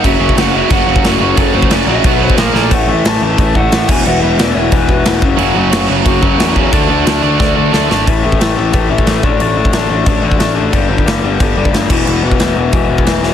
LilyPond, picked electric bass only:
\new Staff \with { instrumentName = "Picked electric bass" } { \clef bass \time 4/4 \key a \major \tempo 4 = 180 fis,,8 fis,,8 fis,,4 fis,,8 fis,,8 fis,,8 fis,,8 | fis,,8 fis,,8 fis,,8 bes,,8 b,,4 bes,,8 bes,,8 | a,,8 a,,8 a,,8 a,,8 a,,8 a,,8 a,,8 e,,8 | e,,8 e,,8 e,,8 e,,8 e,,8 e,,8 e,,8 fis,,8 |
fis,,8 fis,,8 fis,,8 fis,,8 fis,,8 fis,,8 e,4 | d,8 d,8 d,8 d,8 d,8 d,8 d,8 gis,,8 | a,,8 a,,8 a,,8 a,,8 a,,8 a,,8 a,,8 a,,8 | a,,8 a,,8 a,,8 a,,8 a,,8 a,,8 a,,4 |
g,,8 g,,8 g,,8 g,,8 g,,8 g,,8 g,,8 e,,8 | e,,8 e,,8 e,,8 e,,8 e,,8 e,,8 e,,4 | }